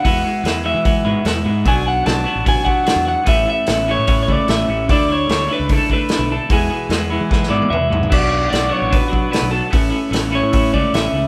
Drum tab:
CC |----------------|----------------|----------------|----------------|
HH |o---o---o---o---|o---o---o---o---|o---o---o---o---|o---o---o---o---|
SD |----o-------o---|----o-------o---|----o-------o---|----o-------o---|
T1 |----------------|----------------|----------------|----------------|
T2 |----------------|----------------|----------------|----------------|
FT |----------------|----------------|----------------|----------------|
BD |o-------o-------|o-------o-o-----|o-------o-o-----|o-------o-o-----|

CC |----------------|x---------------|----------------|
HH |o---o-----------|----o---o---o---|o---o---o---o---|
SD |----o---oo------|----o-------o---|----o-------o---|
T1 |-----------o----|----------------|----------------|
T2 |------------o---|----------------|----------------|
FT |--------------oo|----------------|----------------|
BD |o-------o-------|o-------o-o-----|o-------o-o-----|